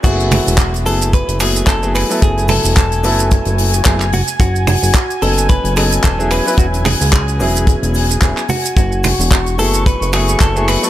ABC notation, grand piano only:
X:1
M:4/4
L:1/16
Q:"Swing 16ths" 1/4=110
K:F#m
V:1 name="Grand piano"
[F,A,B,EG]6 [F,A,B,EG]4 [F,A,B,EG]3 [F,A,B,EG]2 [F,A,B,EA]- | [F,A,B,EA]6 [F,A,B,EA]6 [F,A,B,EG] z3 | z6 [F,B,C^DA]4 [F,B,CDA]3 [F,B,CEG]2 [F,B,CEB]- | [F,B,CEB]6 [F,B,CEG]6 [F,B,CEG] z3 |
z6 [F,A,B,EG]4 [F,A,B,EG]3 [F,A,B,EG]2 [F,A,B,EA] |]